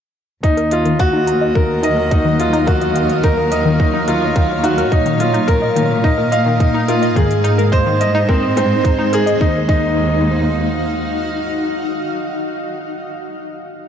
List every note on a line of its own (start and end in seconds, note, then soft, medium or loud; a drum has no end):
0.43 4.89 D#2 medium
0.43 4.88 F#3 medium
0.43 0.51 D#4 loud
0.43 0.70 D#4 medium
0.43 2.65 D#5 medium
0.43 7.12 F5 medium
0.43 kick loud
0.43 closed hi-hat soft
0.57 0.65 A#4 medium
0.57 closed hi-hat soft
0.71 0.98 F4 medium
0.71 0.76 D#5 medium
0.71 closed hi-hat medium
0.85 0.97 D#3 medium
0.85 closed hi-hat soft
0.99 1.26 F#4 loud
0.99 kick loud
0.99 closed hi-hat soft
1.13 1.21 D#4 loud
1.27 1.35 A#4 medium
1.27 closed hi-hat medium
1.41 1.46 D#5 medium
1.55 1.67 D#3 medium
1.55 1.72 A#4 medium
1.55 kick loud
1.83 1.91 D#4 loud
1.83 2.10 D#5 medium
1.83 closed hi-hat medium
1.97 2.05 A#4 medium
2.11 2.38 D#4 medium
2.11 2.16 D#5 medium
2.11 kick loud
2.11 closed hi-hat soft
2.25 2.37 D#3 medium
2.40 2.56 F4 medium
2.40 closed hi-hat medium
2.53 2.61 D#4 loud
2.53 closed hi-hat soft
2.67 2.94 F#4 medium
2.67 2.75 A#4 medium
2.67 4.90 C#5 medium
2.67 kick loud
2.67 closed hi-hat soft
2.81 2.86 D#5 medium
2.81 closed hi-hat soft
2.96 3.08 D#3 medium
2.96 closed hi-hat medium
3.10 closed hi-hat soft
3.24 3.32 D#4 loud
3.24 3.51 A#4 loud
3.24 kick loud
3.24 closed hi-hat soft
3.37 3.45 A#4 medium
3.51 3.56 D#5 medium
3.51 3.79 D#5 medium
3.51 closed hi-hat medium
3.66 3.77 D#3 medium
3.80 4.06 D#4 medium
3.80 kick loud
3.94 4.02 D#4 loud
4.08 4.35 F4 medium
4.08 4.16 A#4 medium
4.08 closed hi-hat medium
4.21 4.26 D#5 medium
4.36 4.48 D#3 medium
4.36 kick loud
4.36 closed hi-hat soft
4.63 4.72 D#4 loud
4.63 4.91 F#4 medium
4.63 closed hi-hat medium
4.78 4.86 A#4 medium
4.78 closed hi-hat soft
4.92 7.13 A#2 loud
4.92 7.14 A#3 medium
4.92 5.18 D#4 medium
4.92 7.14 D#5 medium
4.92 4.97 D#5 medium
4.92 kick loud
4.92 closed hi-hat soft
5.06 5.18 D#3 medium
5.06 closed hi-hat soft
5.20 5.47 F4 medium
5.20 closed hi-hat medium
5.34 5.42 D#4 loud
5.34 closed hi-hat soft
5.48 5.56 A#4 medium
5.48 5.75 A#4 loud
5.48 kick loud
5.48 closed hi-hat soft
5.62 5.67 D#5 medium
5.76 5.88 D#3 medium
5.76 closed hi-hat medium
6.04 6.12 D#4 loud
6.04 6.20 D#5 medium
6.04 kick loud
6.18 6.26 A#4 medium
6.32 6.37 D#5 medium
6.32 6.59 F5 medium
6.32 closed hi-hat medium
6.46 6.58 D#3 medium
6.60 6.87 D#4 medium
6.60 kick loud
6.60 closed hi-hat soft
6.74 6.82 D#4 loud
6.88 7.04 F4 medium
6.88 6.96 A#4 medium
6.88 closed hi-hat medium
7.02 7.07 D#5 medium
7.02 closed hi-hat soft
7.16 9.38 G#2 loud
7.16 7.28 D#3 medium
7.16 9.38 G#3 medium
7.16 9.38 D#4 medium
7.16 7.43 G#4 medium
7.16 9.39 C5 medium
7.16 kick loud
7.16 closed hi-hat soft
7.31 closed hi-hat soft
7.44 7.52 D#4 loud
7.44 closed hi-hat medium
7.58 7.66 A#4 medium
7.58 closed hi-hat soft
7.72 7.99 C5 loud
7.72 7.77 D#5 medium
7.72 kick loud
7.72 closed hi-hat soft
7.86 7.98 D#3 medium
8.01 8.27 D#5 medium
8.01 closed hi-hat medium
8.15 8.22 D#4 loud
8.29 8.55 C4 medium
8.29 8.37 A#4 medium
8.29 kick loud
8.43 8.47 D#5 medium
8.57 8.68 C4 medium
8.57 8.83 C4 medium
8.57 closed hi-hat medium
8.84 8.92 D#4 medium
8.84 kick loud
8.84 closed hi-hat soft
8.99 9.10 D#4 loud
9.13 9.40 G#4 loud
9.13 9.20 A#4 medium
9.13 closed hi-hat medium
9.26 9.38 D#5 medium
9.26 closed hi-hat soft
9.41 9.56 D#2 medium
9.41 9.56 D#4 loud
9.41 12.41 D#4 medium
9.41 9.56 D#4 loud
9.41 12.41 F#4 medium
9.41 12.41 F5 medium
9.41 kick loud
9.69 11.05 D#2 loud
9.69 9.84 D#4 loud
9.69 9.85 D#4 loud
9.69 kick loud